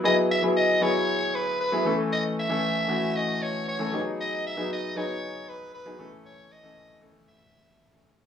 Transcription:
X:1
M:4/4
L:1/16
Q:1/4=116
K:Alyd
V:1 name="Soprano saxophone"
d2 e2 d2 c4 B2 B3 z | d2 e6 d2 c2 c3 z | d2 e2 d2 c4 B2 B3 z | c2 d4 z2 e6 z2 |]
V:2 name="Grand piano"
[F,B,EG]2 z [F,B,EG]2 z [F,B,EG]4- [F,B,EG] z2 [F,B,EG] [E,A,CA]2- | [E,A,CA]2 z [E,A,CA]2 z [E,A,CF]4- [E,A,CF] z2 [E,A,CA] [F,B,D=G^G]2- | [F,B,D=G^G]2 z [F,B,DG]2 z [F,B,DG]4- [F,B,DG] z2 [F,B,DG] [E,A,CA]2- | [E,A,CA]2 z [E,A,CA]2 z [E,A,CA]4- [E,A,CA] z2 [E,A,CA]2 z |]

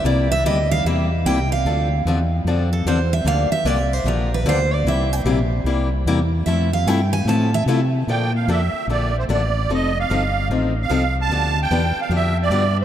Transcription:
X:1
M:4/4
L:1/8
Q:"Swing" 1/4=149
K:F
V:1 name="Accordion"
z8 | z8 | z8 | z8 |
z8 | g f e2 d c d2 | _e f3 z f2 a- | a g2 f e d2 z |]
V:2 name="Steel-string acoustic guitar"
d e _e f =e2 g f- | f2 z3 A c e | f e d c B =B c d | e g z6 |
e f g _a =a e z2 | z8 | z8 | z8 |]
V:3 name="Steel-string acoustic guitar"
[C,G,B,EG] z [C,G,B,EG] z [C,G,B,EG] z [C,G,B,EG] z | [D,F,CDA] z [D,F,CDA] z [D,F,CDA] z [D,F,CDA] z | [D,F,B,DG] z [D,F,B,DG] z [D,F,B,DG] z [D,F,B,DG] z | [C,G,B,EG] z [C,G,B,EG] z [C,G,B,EG] z [C,G,B,EG] z |
[F,A,CEA] z [F,A,CEA] z [F,A,CEA] z [F,A,CEA] z | [D,F,B,DA] z [D,F,B,DA] z [D,F,B,DA] z [D,F,B,DA] z | [F,C_EA] z [F,CEA] z [F,CEA] z [F,CEA] z | [D,F,=B,DG] z [D,F,B,DG] z [D,F,B,DG] z [D,F,B,DG] z |]
V:4 name="Fingered electric bass" clef=bass
C,,2 D,,2 E,,2 C,,2 | D,,2 E,,2 F,,2 E,,2 | D,, z C,,2 B,,,2 D,,2 | C,,2 B,,,2 C,,2 E,,2 |
F,,2 G,,2 A,,2 C,2 | B,,2 F,, z B,,,2 A,,,2 | F,,,2 G,,,2 A,,,2 C,,2 | D,,2 E,, z F,,2 G,,2 |]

